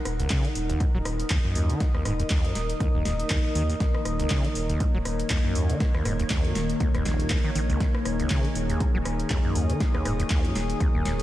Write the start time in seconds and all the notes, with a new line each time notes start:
Already playing: D#3 A#3 D#4 A#4 D#5 F#5
0.05 D#1, cross-stick, open hi-hat
0.20 C#2, closed hi-hat
0.30 C#3, kick, snare, clap, closed hi-hat
0.45 D#3, closed hi-hat
0.55 D#1, open hi-hat
0.70 D#2, closed hi-hat
0.75 D#6
0.80 F#2, kick, closed hi-hat
0.95 D#1 F#3
1.05 D#1, cross-stick, open hi-hat
1.20 closed hi-hat
1.30 D#2, kick, clap, closed hi-hat
1.45 F#2
1.55 D#2, open hi-hat
1.70 D#3, closed hi-hat
1.80 F#2, kick, snare, closed hi-hat
1.95 D#2, cross-stick
2.05 D#1 G#2, cross-stick, open hi-hat
2.20 D#2, closed hi-hat
2.30 D#2, kick, snare, clap, closed hi-hat
2.45 F#2, closed hi-hat
2.55 D#1, snare, open hi-hat
2.70 closed hi-hat
2.80 D#2, kick, closed hi-hat
2.95 D#1 D#2
3.05 D#1 D#2, snare, open hi-hat
3.20 closed hi-hat
3.30 D#2, kick, clap, closed hi-hat
3.55 D#2 D#3, open hi-hat
3.63 C#5
3.70 D#2, open hi-hat
3.80 D#2, kick, snare, closed hi-hat
3.95 cross-stick
4.05 D#1, cross-stick, open hi-hat
4.20 C#2, closed hi-hat
4.30 C#3, kick, snare, clap, closed hi-hat
4.45 D#3, closed hi-hat
4.55 D#1, open hi-hat
4.70 D#2, closed hi-hat
4.75 G#6
4.80 F#2, kick, closed hi-hat
4.94 D#1 F#3
5.05 D#1, cross-stick, open hi-hat
5.20 closed hi-hat
5.30 D#2, kick, clap, closed hi-hat
5.45 F#2
5.55 D#2, open hi-hat
5.70 D#3, closed hi-hat
5.80 F#2, kick, snare, closed hi-hat
5.95 D#2, cross-stick
6.05 D#1 G#2, cross-stick, open hi-hat
6.20 D#2, closed hi-hat
6.30 D#2, kick, snare, clap, closed hi-hat
6.45 F#2, closed hi-hat
6.55 D#1, snare, open hi-hat
6.70 closed hi-hat
6.80 D#2, kick, closed hi-hat
6.95 D#1 D#2, cross-stick, closed hi-hat
7.05 D#1 A#1, snare, open hi-hat
7.20 closed hi-hat
7.30 F#2, kick, clap, closed hi-hat
7.45 D#3
7.55 A#1 D#3, open hi-hat
7.70 C#2, open hi-hat
7.80 G#4 G#5, kick, snare, closed hi-hat
7.95 cross-stick
8.05 D#1, cross-stick, open hi-hat
8.20 C#2, closed hi-hat
8.30 C#3, kick, snare, clap, closed hi-hat
8.45 D#3, closed hi-hat
8.55 D#1, open hi-hat
8.70 D#2, closed hi-hat
8.75 D#6
8.80 F#2, kick, closed hi-hat
8.95 D#1 F#3
9.05 D#1, cross-stick, open hi-hat
9.20 closed hi-hat
9.30 D#2, kick, clap, closed hi-hat
9.45 F#2
9.55 D#2, open hi-hat
9.70 D#3, closed hi-hat
9.80 F#2, kick, snare, closed hi-hat
9.95 D#2, cross-stick
10.05 D#1 G#2, cross-stick, open hi-hat
10.20 D#2, closed hi-hat
10.30 D#2, kick, snare, clap, closed hi-hat
10.45 F#2, closed hi-hat
10.55 D#1, snare, open hi-hat
10.70 closed hi-hat
10.80 D#2, kick, closed hi-hat
10.94 D#1 D#2
11.05 D#1 D#2, snare, open hi-hat
11.20 closed hi-hat